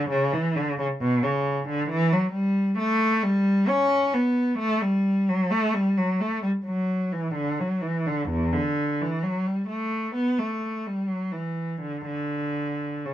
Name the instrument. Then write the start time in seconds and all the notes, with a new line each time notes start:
cello
Already playing: D3
0.10 C#3
0.33 E3
0.56 D3
0.79 C#3
1.01 B2
1.23 C#3
1.69 D3
1.90 E3
2.12 F#3
2.33 G3
2.78 A3
3.23 G3
3.68 C#4
4.13 B3
4.59 A3
4.82 G3
5.29 F#3
5.51 A3
5.74 G3
5.97 F#3
6.20 A3
6.42 G3
6.65 F#3
7.12 E3
7.34 D3
7.60 F#3
7.81 E3
8.06 D3
8.29 E2
8.53 D3
9.01 E3
9.23 F#3
9.46 G3
9.69 A3
10.15 B3
10.39 A3
10.87 G3
11.08 F#3
11.32 E3
11.82 D3
12.05 D3
13.05 C#3